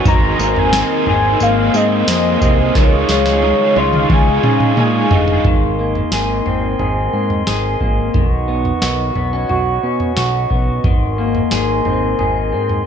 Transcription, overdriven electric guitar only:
0.05 0.39 G#2 medium
0.05 0.39 D#3 medium
0.05 0.39 A#3 medium
0.05 0.39 C4 medium
0.05 0.38 D#4 medium
0.05 0.37 G#4 medium
0.38 0.72 A#3 medium
0.38 0.73 C4 medium
0.38 0.73 D#4 medium
0.38 0.72 G#4 medium
0.72 1.06 G#2 medium
0.72 1.06 D#3 medium
0.72 1.07 A#3 medium
0.72 1.07 C4 loud
0.72 1.06 D#4 medium
0.72 1.04 G#4 medium
1.06 1.38 A#3 soft
1.06 1.39 C4 soft
1.06 1.40 D#4 medium
1.06 1.40 G#4 medium
1.39 1.73 A#3 medium
1.39 1.74 C4 medium
1.39 1.73 D#4 medium
1.39 1.72 G#4 medium
1.73 2.07 A#3 soft
1.73 2.08 C4 soft
1.73 2.08 D#4 soft
1.73 2.07 G#4 medium
2.07 2.41 G#2 medium
2.07 2.41 D#3 medium
2.07 2.42 A#3 medium
2.07 2.42 C4 medium
2.07 2.40 D#4 medium
2.07 2.39 G#4 medium
2.40 2.75 A#3 medium
2.40 2.75 C4 soft
2.40 2.75 D#4 medium
2.40 2.75 G#4 medium
2.74 3.08 C#3 medium
2.74 3.09 G#3 medium
2.74 3.09 D#4 medium
2.74 3.09 F4 medium
2.74 3.07 G#4 medium
3.08 3.42 D#4 soft
3.08 3.42 F4 soft
3.08 3.42 G#4 medium
3.42 3.76 C#3 medium
3.42 3.76 G#3 medium
3.42 3.77 D#4 medium
3.42 3.76 F4 medium
3.42 3.74 G#4 medium
3.75 4.09 D#4 soft
3.75 4.10 F4 soft
3.75 4.09 G#4 soft
4.09 4.43 G#3 medium
4.09 4.44 D#4 medium
4.09 4.44 F4 medium
4.09 4.42 G#4 medium
4.43 4.77 D#4 soft
4.43 4.78 F4 soft
4.43 4.77 G#4 medium
4.77 5.11 C#3 medium
4.77 5.11 G#3 medium
4.77 5.12 D#4 medium
4.77 5.11 F4 medium
4.77 5.09 G#4 medium
5.10 5.46 D#4 medium
5.10 5.45 F4 medium
5.10 5.44 G#4 medium

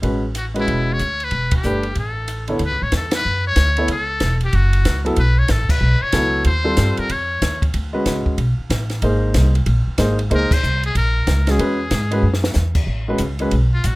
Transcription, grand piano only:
0.02 0.21 G#3 soft
0.02 0.21 C#4 soft
0.02 0.21 F#4 soft
0.02 0.22 B4 medium
0.54 0.97 G#3 medium
0.54 0.97 C#4 medium
0.54 0.97 F#4 medium
0.54 0.98 B4 medium
1.64 1.82 A3 medium
1.64 1.83 D4 medium
1.64 1.83 G4 medium
1.64 1.83 B4 medium
2.48 2.59 D3 medium
2.48 2.59 B3 soft
2.48 2.59 E4 medium
2.48 2.60 A4 soft
2.48 2.60 C#5 medium
3.78 3.88 B3 medium
3.78 3.88 E4 medium
3.78 3.88 A4 medium
3.78 3.89 C#5 medium
5.05 5.16 F#3 medium
5.05 5.16 B3 medium
5.05 5.16 E4 medium
5.05 5.17 A4 medium
6.13 6.45 F#3 medium
6.13 6.46 B3 medium
6.13 6.46 E4 medium
6.13 6.46 A4 medium
6.64 7.07 G3 medium
6.64 7.07 C4 medium
6.64 7.07 F4 medium
6.64 7.07 A4 medium
7.93 8.35 G#3 medium
7.93 8.36 C#4 medium
7.93 8.36 F#4 medium
7.93 8.36 B4 medium
9.02 9.51 A#3 medium
9.02 9.51 D#4 medium
9.02 9.51 G#4 medium
9.02 9.52 C5 medium
9.98 10.17 A#3 medium
9.98 10.17 D#4 medium
9.98 10.17 G#4 medium
9.98 10.17 C5 medium
10.30 10.49 A#3 medium
10.30 10.49 D#4 medium
10.30 10.49 G#4 medium
10.30 10.50 C5 medium
11.47 11.57 G#3 medium
11.47 11.58 C#4 medium
11.47 11.58 F#4 medium
11.47 11.59 G#4 medium
11.59 11.77 G#3 medium
11.59 11.78 C#4 medium
11.59 11.78 F#4 soft
11.59 11.78 B4 medium
12.11 12.22 G#3 medium
12.11 12.22 C#4 medium
12.11 12.23 F#4 medium
12.11 12.23 B4 medium
13.08 13.19 G#3 medium
13.08 13.19 C#4 medium
13.08 13.19 F#4 medium
13.08 13.20 B4 medium
13.40 13.51 G#3 medium
13.40 13.51 C#4 medium
13.40 13.51 F#4 medium
13.40 13.52 B4 medium

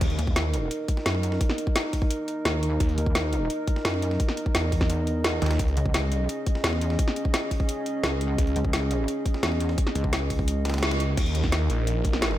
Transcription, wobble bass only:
0.19 0.70 D#2 loud
1.06 1.39 F#2 loud
2.45 2.79 D#2 loud
2.98 3.49 D#2 loud
3.85 4.18 F#2 loud
4.55 5.41 E2 loud
5.77 6.28 C#2 loud
6.64 6.98 E2 loud
8.04 8.37 C#2 loud
8.56 9.07 C#2 loud
9.43 9.77 E2 loud
9.95 11.16 C#2 loud

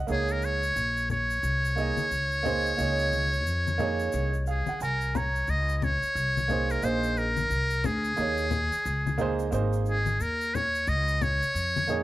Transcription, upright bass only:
0.08 0.73 C#2 medium
0.76 1.40 A#1 medium
1.43 1.95 C2 medium
1.98 muted upright bass stroke soft
2.11 2.75 C#2 medium
2.78 3.46 C#2 loud
3.46 4.10 F2 medium
4.14 4.65 C2 medium
4.81 5.45 C2 medium
5.48 6.00 C#2 loud
6.03 muted upright bass stroke soft
6.15 6.80 C2 medium
6.83 7.47 A#1 loud
7.50 7.82 C2 medium
7.84 8.16 D2 loud
8.17 8.69 D#2 loud
8.72 muted upright bass stroke soft
8.85 9.49 C#2 medium
9.52 10.17 G#1 loud
10.20 10.84 D#2 medium
10.87 11.39 C#2 loud
11.41 muted upright bass stroke soft
11.54 12.03 F2 medium

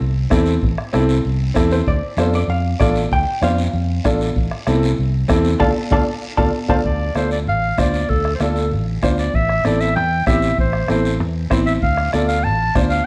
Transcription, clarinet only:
6.69 6.76 C5 medium
6.86 7.14 D5 medium
7.16 7.30 C5 medium
7.32 7.39 D5 medium
7.49 7.81 F5 loud
7.79 8.11 D5 medium
8.10 8.33 A4 medium
8.35 8.42 C5 medium
8.41 8.72 A4 medium
9.18 9.37 D5 medium
9.35 9.66 E5 medium
9.65 9.82 D5 medium
9.81 9.95 E5 medium
9.96 10.25 G5 loud
10.27 10.56 E5 medium
10.60 10.88 C5 medium
10.92 11.19 C5 medium
11.66 11.73 E5 medium
11.83 12.12 F5 medium
12.13 12.27 D5 medium
12.28 12.45 F5 medium
12.44 12.75 A5 loud
12.90 13.06 F5 medium

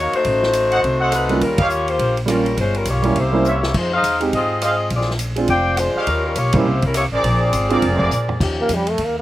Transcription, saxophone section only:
0.00 0.13 A#3 medium
0.00 0.14 D#4 medium
0.00 0.13 F#4 medium
0.00 0.14 C#5 medium
0.15 1.09 A3 medium
0.15 1.09 D#4 medium
0.15 1.09 F#4 medium
0.15 1.09 C5 loud
1.14 1.43 A3 medium
1.14 1.42 D#4 medium
1.14 1.42 F#4 medium
1.14 1.42 B4 medium
1.43 1.59 G3 medium
1.43 1.60 C#4 medium
1.43 1.60 F4 medium
1.43 1.59 A#4 medium
1.61 1.88 A#3 medium
1.61 1.89 F4 medium
1.61 1.88 G4 medium
1.61 1.89 C#5 medium
1.89 2.18 A#3 medium
1.89 2.18 F4 medium
1.89 2.18 G4 medium
1.89 2.18 C5 medium
2.29 2.56 G3 medium
2.29 2.56 C#4 medium
2.29 2.56 F4 medium
2.29 2.56 A#4 medium
2.60 2.76 G#3 medium
2.60 2.76 C#4 medium
2.60 2.76 F4 medium
2.60 2.76 C5 medium
2.77 2.88 G3 medium
2.77 2.88 C#4 medium
2.77 2.88 F4 medium
2.77 2.88 A#4 medium
2.89 3.17 A#3 medium
2.89 3.17 F4 medium
2.89 3.17 G4 medium
2.89 3.17 C#5 medium
3.18 3.46 A#3 medium
3.18 3.46 E4 medium
3.18 3.46 G4 medium
3.18 3.46 C5 medium
3.48 3.75 A#3 medium
3.48 3.75 E4 medium
3.48 3.76 G4 medium
3.48 3.75 C#5 medium
3.76 3.91 G#3 medium
3.76 3.92 D#4 medium
3.76 3.91 F4 medium
3.76 3.92 C5 medium
3.94 4.20 D#4 medium
3.94 4.20 G#4 medium
3.94 4.20 C5 medium
3.94 4.20 F5 medium
4.35 4.61 C4 medium
4.35 4.61 F4 medium
4.35 4.61 G#4 medium
4.35 4.61 D#5 medium
4.64 4.90 C4 medium
4.64 4.90 F4 medium
4.64 4.90 G#4 medium
4.64 4.90 D#5 medium
4.96 5.11 C4 medium
4.96 5.11 F4 medium
4.96 5.11 G#4 medium
4.96 5.11 D5 medium
5.50 5.77 F4 medium
5.50 5.76 C5 medium
5.50 5.76 D5 medium
5.50 5.77 G5 loud
5.78 6.07 G#3 medium
5.78 6.07 D4 medium
5.78 6.07 F4 medium
5.78 6.07 C5 medium
6.08 6.24 G3 medium
6.08 6.25 C#4 medium
6.08 6.24 F4 medium
6.08 6.25 A#4 medium
6.25 6.36 G3 medium
6.25 6.36 C#4 medium
6.25 6.36 F4 medium
6.25 6.36 A#4 medium
6.36 6.54 A#3 medium
6.36 6.54 F4 medium
6.36 6.53 G4 medium
6.36 6.54 C#5 medium
6.54 6.83 A#3 medium
6.54 6.83 E4 medium
6.54 6.83 G4 medium
6.54 6.83 C5 medium
6.85 6.95 G3 medium
6.85 6.95 C#4 medium
6.85 6.95 E4 medium
6.85 6.95 A#4 medium
6.97 7.05 A#3 medium
6.97 7.04 E4 medium
6.97 7.04 G4 medium
6.97 7.04 C#5 medium
7.16 8.27 C4 medium
7.16 8.27 F4 medium
7.16 8.26 G#4 medium
7.16 8.27 D5 medium

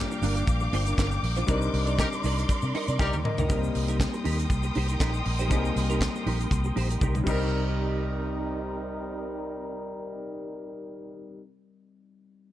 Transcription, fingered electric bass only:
0.22 0.41 G1 loud
0.48 0.67 A#1 loud
0.73 0.92 G1 loud
0.98 1.17 G1 loud
1.23 1.42 A#1 loud
1.48 1.68 C2 medium
1.74 2.03 C2 loud
2.24 2.43 C2 loud
2.63 2.72 C3 loud
2.88 2.97 C3 loud
3.00 3.10 C2 loud
3.14 3.22 D#2 medium
3.38 3.47 C2 medium
3.50 3.69 C2 loud
3.75 4.05 C2 loud
4.26 4.45 D#2 loud
4.50 4.69 C2 medium
4.76 4.95 C2 loud
5.00 5.20 A#1 loud
5.26 5.51 A#1 loud
5.51 5.70 C2 loud
5.76 6.06 C2 loud
6.26 6.46 A#1 medium
6.51 6.71 C2 medium
6.76 6.96 A#1 loud
7.01 7.21 C2 loud
7.27 11.40 C2 loud

